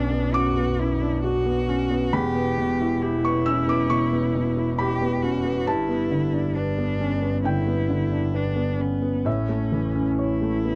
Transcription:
Already playing: B1 F#2 B3 C#4 D4 F#4 F#5
0.11 B3
0.34 F#2 F#4 D6
0.57 B3
0.79 F#2 E4
1.01 D4
1.23 F#4
1.46 B3
1.68 C#4
1.90 B3
2.12 E1 E2 G4 B5
2.35 B3
2.58 B2
2.80 E4
3.01 E4 G4
3.24 B3 C#6
3.46 C#4 E6
3.67 B3 D6
3.90 B2 C#6
4.12 B3
4.35 B2
4.57 E4
4.78 G4 B5
5.01 B3
5.22 C#4 F#4
5.45 B3
5.66 G1 G2 E4 A5
5.89 B3
6.11 D3
6.33 D4
6.55 D4 B4
6.78 B3
7.00 C#4
7.21 B3
7.44 D3 E4 G5
7.67 B3
7.89 D3
8.11 D4
8.34 D4 B4
8.56 B3
8.79 B3 C#4
9.02 B3
9.25 A1 A2 C#4 E5
9.49 A3
9.72 E3
9.95 C#4
10.19 E4 C#5
10.42 A3
10.65 B3

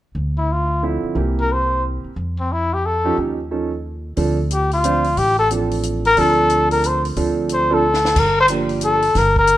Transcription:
0.15 D2
0.38 E4
0.52 F4
0.82 D3 F3 C4 E4
1.03 muted upright bass stroke
1.15 C2 E3 A#3 C4 G4
1.41 A#4
1.53 C5
2.04 muted upright bass stroke
2.16 F2
2.40 C4
2.52 E4
2.73 G4
2.86 A4
3.04 F3 C#4 D#4 G4
3.17 D#2 F3 C#4 D#4 G4
3.51 F3 C#4 D#4 A4
4.16 D2 F3 C4 D4 A4, kick, open hi-hat
4.51 G4, closed hi-hat
4.71 F4, open hi-hat
4.84 F3 C4 D4 C5, closed hi-hat
5.04 open hi-hat
5.17 A1 G4, kick, open hi-hat
5.39 A4
5.51 F3 C4 D4 A4, closed hi-hat
5.71 open hi-hat
5.83 closed hi-hat
6.05 A#4, open hi-hat
6.17 D2 F3 C4 D4 A4, kick, open hi-hat
6.50 closed hi-hat
6.71 A#4, open hi-hat
6.84 C5, closed hi-hat
7.05 open hi-hat
7.16 D2 F3 C4 D4 A4, kick, open hi-hat
7.49 closed hi-hat
7.53 C5
7.70 F3 C4 D4 A4
7.94 snare
8.05 snare
8.16 G1 A#4, kick, crash
8.40 C5
8.48 F3 A#3 D4 G4, closed hi-hat
8.69 open hi-hat
8.81 A4, closed hi-hat
9.02 open hi-hat
9.15 G1 A#4, kick, snare, open hi-hat
9.36 A#4, kick
9.47 closed hi-hat

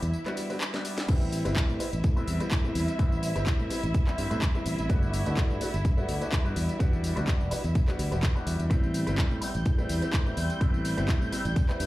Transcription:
Already playing: E4 E5
0.02 E2, closed hi-hat, tambourine
0.13 tambourine
0.26 G3 B3 D4 F#4, clap, closed hi-hat, tambourine
0.37 open hi-hat, tambourine
0.50 G3 B3 D4 F#4, open hi-hat, tambourine
0.61 clap, tambourine
0.73 G3 B3 D4 F#4, snare, closed hi-hat, tambourine
0.85 open hi-hat, tambourine
0.98 snare, closed hi-hat, tambourine
1.08 A1 G3 B3 C4 E4 E5, kick, closed hi-hat, tambourine, crash
1.22 tambourine
1.32 open hi-hat, tambourine
1.45 G1 G3 B3 C4 E4, closed hi-hat, tambourine
1.56 kick, clap, closed hi-hat, tambourine
1.69 A2, tambourine
1.80 G3 B3 C4 E4, muted fingered electric bass stroke, open hi-hat, tambourine
1.93 A1, closed hi-hat, tambourine
2.04 A2, kick, closed hi-hat, tambourine
2.16 G3 B3 C4 E4, tambourine
2.27 E2, open hi-hat, tambourine
2.40 G3 B3 C4 E4, muted fingered electric bass stroke, closed hi-hat, tambourine
2.51 A2, kick, clap, closed hi-hat, tambourine
2.64 G3 B3 C4 E4, tambourine
2.75 E2, open hi-hat, tambourine
2.88 closed hi-hat, tambourine
2.99 A1 G3 B3 C4 E4, kick, closed hi-hat, tambourine
3.12 tambourine
3.23 open hi-hat, tambourine
3.36 G1 G3 B3 C4 E4, closed hi-hat, tambourine
3.47 kick, clap, closed hi-hat, tambourine
3.60 A2, tambourine
3.70 G3 B3 C4 E4, muted fingered electric bass stroke, open hi-hat, tambourine
3.83 A1, closed hi-hat, tambourine
3.94 kick, closed hi-hat, tambourine
4.07 G3 B3 C4 E4, muted fingered electric bass stroke, clap, tambourine
4.18 G2, open hi-hat, tambourine
4.30 A2 G3 B3 C4 E4, closed hi-hat, tambourine
4.42 kick, clap, closed hi-hat, tambourine
4.54 G3 B3 C4 E4, tambourine
4.66 A1, open hi-hat, tambourine
4.79 A1, closed hi-hat, tambourine
4.89 G1 A3 B3 D4 F#4, kick, closed hi-hat, tambourine
5.03 tambourine
5.13 open hi-hat, tambourine
5.26 D2 A3 B3 D4 F#4, closed hi-hat, tambourine
5.37 kick, clap, closed hi-hat, tambourine
5.50 G2, tambourine
5.61 A3 B3 D4 F#4, muted fingered electric bass stroke, open hi-hat, tambourine
5.74 G1, closed hi-hat, tambourine
5.85 G2, kick, closed hi-hat, tambourine
5.97 A3 B3 D4 F#4, tambourine
6.09 D2, open hi-hat, tambourine
6.21 A3 B3 D4 F#4, muted fingered electric bass stroke, closed hi-hat, tambourine
6.32 G2, kick, clap, closed hi-hat, tambourine
6.45 G3 B3 D4 F#4, tambourine
6.56 E2, open hi-hat, tambourine
6.69 closed hi-hat, tambourine
6.79 E2 G3 B3 D4 F#4, kick, closed hi-hat, tambourine
6.93 tambourine
7.04 open hi-hat, tambourine
7.16 D2 G3 B3 D4 F#4, closed hi-hat, tambourine
7.28 kick, clap, closed hi-hat, tambourine
7.40 E1, tambourine
7.51 G3 B3 D4 F#4, muted fingered electric bass stroke, open hi-hat, tambourine
7.64 E2, closed hi-hat, tambourine
7.75 kick, closed hi-hat, tambourine
7.88 G3 B3 D4 F#4, muted fingered electric bass stroke, clap, tambourine
7.99 D2, open hi-hat, tambourine
8.12 E1 G3 B3 D4 F#4, closed hi-hat, tambourine
8.23 kick, clap, closed hi-hat, tambourine
8.35 G3 B3 D4 F#4, tambourine
8.47 E2, open hi-hat, tambourine
8.59 E2, closed hi-hat, tambourine
8.70 A1 G3 B3 C4 E4 G6, kick, closed hi-hat, tambourine
8.84 tambourine
8.94 open hi-hat, tambourine
9.07 G1 G3 B3 C4 E4, closed hi-hat, tambourine
9.18 kick, clap, closed hi-hat, tambourine
9.31 A2, tambourine
9.41 G3 B3 C4 E4, muted fingered electric bass stroke, open hi-hat, tambourine
9.55 A1, closed hi-hat, tambourine
9.66 A2, kick, closed hi-hat, tambourine
9.78 G3 B3 C4 E4, tambourine
9.89 E2, open hi-hat, tambourine
10.02 G3 B3 C4 E4, muted fingered electric bass stroke, closed hi-hat, tambourine
10.13 A2, kick, clap, closed hi-hat, tambourine
10.26 G3 B3 C4 E4, tambourine
10.37 E2, open hi-hat, tambourine
10.50 closed hi-hat, tambourine
10.61 A1 G3 B3 C4 E4, kick, closed hi-hat, tambourine
10.74 tambourine
10.85 open hi-hat, tambourine
10.97 G1 G3 B3 C4 E4, closed hi-hat, tambourine
11.09 kick, clap, closed hi-hat, tambourine
11.21 A2, tambourine
11.32 G3 B3 C4 E4, muted fingered electric bass stroke, open hi-hat, tambourine
11.45 A1, closed hi-hat, tambourine
11.56 kick, closed hi-hat, tambourine
11.69 G3 B3 C4 E4, muted fingered electric bass stroke, clap, tambourine
11.80 G2, open hi-hat, tambourine

